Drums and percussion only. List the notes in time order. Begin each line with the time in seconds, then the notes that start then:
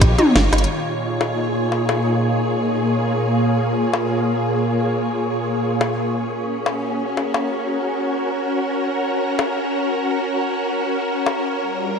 0.01 kick, snare, closed hi-hat
0.19 closed hi-hat, mid tom
0.36 snare, high bongo
0.53 snare, closed hi-hat
0.58 closed hi-hat
0.64 closed hi-hat
1.21 high bongo
1.72 high bongo
1.89 high bongo
3.94 high bongo
5.81 high bongo
6.66 high bongo
7.17 high bongo
7.34 high bongo
9.39 high bongo
11.26 high bongo